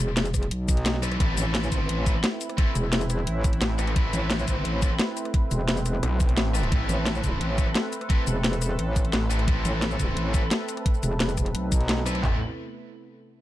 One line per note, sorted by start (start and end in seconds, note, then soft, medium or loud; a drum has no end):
0.00 0.50 E1 medium
0.17 snare loud
0.17 closed hi-hat loud
0.25 closed hi-hat soft
0.25 shaker soft
0.34 kick medium
0.34 cross-stick soft
0.34 closed hi-hat medium
0.34 shaker medium
0.43 closed hi-hat soft
0.51 1.19 B1 loud
0.51 closed hi-hat loud
0.68 kick loud
0.68 closed hi-hat medium
0.68 shaker medium
0.77 closed hi-hat soft
0.86 snare loud
0.86 closed hi-hat loud
0.94 snare soft
1.02 1.15 C4 medium
1.02 1.15 E4 medium
1.02 1.15 A4 medium
1.02 1.15 B4 medium
1.02 cross-stick soft
1.02 closed hi-hat medium
1.02 shaker medium
1.12 cross-stick soft
1.12 closed hi-hat soft
1.20 1.36 A1 medium
1.20 12.20 A3 medium
1.20 2.04 C4 medium
1.20 12.20 C4 medium
1.20 6.70 E4 medium
1.20 2.04 E4 medium
1.20 2.04 A4 medium
1.20 12.20 B4 medium
1.20 2.04 B4 medium
1.20 kick loud
1.20 closed hi-hat loud
1.37 1.88 A1 loud
1.37 closed hi-hat medium
1.37 shaker medium
1.55 snare loud
1.55 closed hi-hat loud
1.63 shaker soft
1.72 kick medium
1.72 closed hi-hat medium
1.72 shaker medium
1.89 2.22 A1 loud
1.89 closed hi-hat loud
2.06 2.14 C4 medium
2.06 2.14 E4 medium
2.06 2.14 A4 medium
2.06 2.14 B4 loud
2.06 kick loud
2.06 closed hi-hat medium
2.06 shaker medium
2.15 cross-stick soft
2.24 snare loud
2.24 closed hi-hat loud
2.41 closed hi-hat medium
2.41 shaker medium
2.49 cross-stick soft
2.49 closed hi-hat soft
2.58 2.70 C4 medium
2.58 2.70 E4 medium
2.58 2.70 A4 medium
2.58 2.70 B4 medium
2.58 kick loud
2.58 closed hi-hat loud
2.75 3.26 E1 loud
2.75 closed hi-hat medium
2.75 shaker medium
2.93 snare loud
2.93 closed hi-hat loud
3.01 closed hi-hat soft
3.01 shaker soft
3.10 cross-stick soft
3.10 closed hi-hat medium
3.10 shaker medium
3.27 3.60 A1 loud
3.27 closed hi-hat loud
3.44 kick loud
3.44 closed hi-hat medium
3.44 shaker medium
3.53 closed hi-hat soft
3.62 3.77 A1 loud
3.62 snare loud
3.62 closed hi-hat medium
3.78 3.95 A1 loud
3.78 3.91 C4 medium
3.78 3.91 E4 medium
3.78 3.91 A4 medium
3.78 3.91 B4 medium
3.78 cross-stick medium
3.78 closed hi-hat medium
3.78 shaker medium
3.87 cross-stick soft
3.87 closed hi-hat soft
3.96 4.12 A1 loud
3.96 4.80 C4 medium
3.96 4.80 E4 medium
3.96 4.80 A4 medium
3.96 4.80 B4 medium
3.96 kick loud
3.96 closed hi-hat medium
4.13 4.64 A1 loud
4.13 closed hi-hat medium
4.13 shaker medium
4.31 snare loud
4.31 closed hi-hat medium
4.39 shaker soft
4.48 kick medium
4.48 closed hi-hat medium
4.48 shaker medium
4.65 4.98 A1 loud
4.65 closed hi-hat medium
4.82 4.90 C4 medium
4.82 4.90 E4 medium
4.82 4.90 A4 medium
4.82 4.90 B4 medium
4.82 kick loud
4.82 closed hi-hat medium
4.82 shaker medium
4.91 cross-stick soft
4.99 snare loud
4.99 closed hi-hat medium
5.17 closed hi-hat medium
5.17 shaker medium
5.25 cross-stick soft
5.25 closed hi-hat soft
5.34 kick loud
5.34 closed hi-hat medium
5.51 6.02 E1 loud
5.51 closed hi-hat medium
5.51 shaker medium
5.68 snare loud
5.68 closed hi-hat medium
5.77 closed hi-hat soft
5.77 shaker soft
5.86 cross-stick soft
5.86 closed hi-hat medium
5.86 shaker medium
6.03 6.36 B1 loud
6.03 closed hi-hat medium
6.20 kick loud
6.20 closed hi-hat medium
6.20 shaker medium
6.29 closed hi-hat soft
6.37 6.71 A1 loud
6.37 snare loud
6.37 closed hi-hat medium
6.54 6.70 C4 medium
6.54 6.70 E4 medium
6.54 6.70 A4 medium
6.54 6.70 B4 medium
6.54 cross-stick soft
6.54 closed hi-hat medium
6.54 shaker medium
6.63 cross-stick soft
6.63 closed hi-hat soft
6.71 6.88 A1 loud
6.71 7.56 C4 medium
6.71 7.56 E4 medium
6.71 12.21 A4 medium
6.71 7.56 A4 medium
6.71 7.56 B4 medium
6.71 kick loud
6.71 closed hi-hat medium
6.89 7.40 A1 loud
6.89 closed hi-hat medium
6.89 shaker medium
7.06 snare loud
7.06 closed hi-hat medium
7.15 shaker soft
7.24 kick medium
7.24 closed hi-hat medium
7.24 shaker medium
7.41 7.74 A1 loud
7.41 closed hi-hat medium
7.58 7.66 C4 medium
7.58 7.66 E4 medium
7.58 7.66 A4 medium
7.58 7.66 B4 medium
7.58 kick loud
7.58 closed hi-hat medium
7.58 shaker medium
7.67 cross-stick soft
7.75 snare loud
7.75 closed hi-hat medium
7.93 closed hi-hat medium
7.93 shaker medium
8.01 cross-stick soft
8.01 closed hi-hat soft
8.09 8.22 C4 medium
8.09 8.22 E4 medium
8.09 8.22 A4 medium
8.09 8.22 B4 medium
8.09 kick loud
8.09 closed hi-hat medium
8.27 8.77 E1 medium
8.27 closed hi-hat medium
8.27 shaker medium
8.44 snare loud
8.44 closed hi-hat medium
8.53 closed hi-hat soft
8.53 shaker soft
8.62 cross-stick soft
8.62 closed hi-hat medium
8.62 shaker medium
8.79 9.12 A1 loud
8.79 closed hi-hat loud
8.96 kick loud
8.96 closed hi-hat medium
8.96 shaker medium
9.05 closed hi-hat soft
9.13 9.29 A1 loud
9.13 snare loud
9.13 closed hi-hat loud
9.30 9.46 A1 loud
9.30 9.43 C4 medium
9.30 9.43 E4 medium
9.30 9.43 A4 medium
9.30 9.43 B4 medium
9.30 cross-stick soft
9.30 closed hi-hat medium
9.30 shaker medium
9.39 cross-stick soft
9.39 closed hi-hat soft
9.47 9.64 A1 loud
9.47 10.32 C4 medium
9.47 10.32 E4 medium
9.47 10.32 A4 medium
9.47 10.32 B4 medium
9.47 kick loud
9.47 closed hi-hat loud
9.65 10.15 A1 medium
9.65 closed hi-hat medium
9.65 shaker medium
9.82 snare loud
9.82 closed hi-hat loud
9.91 shaker soft
9.99 kick medium
9.99 closed hi-hat medium
9.99 shaker medium
10.17 10.50 A1 loud
10.17 closed hi-hat loud
10.34 10.42 C4 medium
10.34 10.42 E4 medium
10.34 10.42 A4 medium
10.34 10.42 B4 medium
10.34 kick loud
10.34 closed hi-hat medium
10.34 shaker medium
10.43 cross-stick soft
10.51 snare loud
10.51 closed hi-hat loud
10.69 closed hi-hat medium
10.69 shaker medium
10.77 cross-stick soft
10.77 closed hi-hat soft
10.86 kick loud
10.86 closed hi-hat loud
10.94 shaker soft
11.03 11.53 E1 loud
11.03 closed hi-hat medium
11.03 shaker medium
11.20 snare loud
11.20 closed hi-hat medium
11.29 closed hi-hat soft
11.29 shaker soft
11.37 kick medium
11.37 cross-stick soft
11.37 closed hi-hat medium
11.37 shaker medium
11.46 closed hi-hat soft
11.55 12.22 B1 loud
11.55 closed hi-hat loud
11.72 kick loud
11.72 closed hi-hat medium
11.72 shaker medium
11.81 closed hi-hat soft
11.89 snare loud
11.89 closed hi-hat loud
11.98 snare soft
12.06 12.22 C4 medium
12.06 12.22 E4 medium
12.06 12.22 A4 medium
12.06 12.22 B4 loud
12.06 cross-stick soft
12.06 closed hi-hat medium
12.06 shaker medium
12.15 cross-stick soft
12.15 closed hi-hat soft
12.23 12.40 A1 loud
12.23 12.40 C3 medium
12.23 12.40 A3 medium
12.23 12.40 B3 medium
12.23 12.36 C4 medium
12.23 12.40 E4 medium
12.23 12.36 E4 medium
12.23 12.36 A4 medium
12.23 12.36 B4 medium
12.23 kick loud
12.23 clap medium
12.23 floor tom loud